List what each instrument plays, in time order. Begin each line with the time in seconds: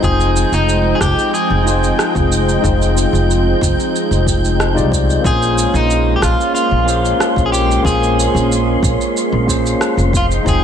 Already playing: analog synth pad F3 G#3 C4 D#4 G5, synth texture G6
0.00 upright bass F1, tine electric piano G#3 D#4 F4 G5, kick, shaker
0.04 clean electric guitar G#4, tine electric piano C5
0.20 shaker
0.37 shaker
0.52 upright bass F1, clean electric guitar D#4, shaker
0.69 shaker
0.95 clean electric guitar G#4
1.00 upright bass F1, clean electric guitar G4, kick, cross-stick, shaker
1.19 shaker
1.34 clean electric guitar G#4, shaker
1.50 upright bass F1
1.63 tine electric piano G#3 D#4 F4
1.67 tine electric piano C5 G5, shaker
1.84 shaker
1.99 cross-stick, shaker
2.15 upright bass F1, kick, shaker
2.32 shaker
2.49 shaker
2.61 upright bass F1, tine electric piano G#3 D#4 F4, kick
2.65 tine electric piano C5 G5, shaker
2.82 shaker
2.98 shaker
3.13 upright bass F1, shaker
3.31 shaker
3.61 upright bass F1, kick, shaker
3.80 shaker
3.96 shaker
4.11 upright bass F1, shaker
4.27 kick, shaker
4.45 shaker
4.60 cross-stick, shaker
4.74 upright bass C2, tine electric piano G#3 D#4 F4 G4 D5, shaker
4.92 kick, shaker
5.10 shaker
5.22 upright bass A#1, analog synth pad G#3 A#3 C#4, tine electric piano A#3 C#4 F4 G#4, synth texture C6, kick
5.26 clean electric guitar G#4, tine electric piano C5, shaker
5.43 shaker
5.58 shaker
5.74 upright bass A#1, clean electric guitar D#4, shaker
5.91 shaker
6.16 clean electric guitar G4
6.22 upright bass A#1, clean electric guitar F4, kick, cross-stick, shaker
6.41 shaker
6.55 clean electric guitar F4, shaker
6.71 upright bass A#1
6.84 tine electric piano A#3 C#4 F4
6.88 tine electric piano G#4 C5, shaker
7.05 shaker
7.20 cross-stick, shaker
7.36 upright bass A#1, kick, shaker
7.46 clean electric guitar G#4
7.52 clean electric guitar G4, shaker
7.71 shaker
7.82 upright bass A#1, tine electric piano A#3 C#4 F4, clean electric guitar G#4, kick
7.86 tine electric piano G#4 C5, shaker
8.03 shaker
8.20 shaker
8.35 upright bass A#1, shaker
8.52 shaker
8.83 upright bass A#1, kick, shaker
9.01 shaker
9.17 shaker
9.32 upright bass A#1
9.46 tine electric piano A#3 C#4 F4 G#4 C5, kick, shaker
9.66 shaker
9.81 cross-stick, shaker
9.97 upright bass F1, shaker
10.13 analog synth pad F3 G#3 C4 D#4 G5, kick, shaker
10.17 clean electric guitar F4
10.31 shaker
10.43 upright bass F1, tine electric piano G#3 D#4 F4, kick
10.47 clean electric guitar G#4, tine electric piano C5 G5, shaker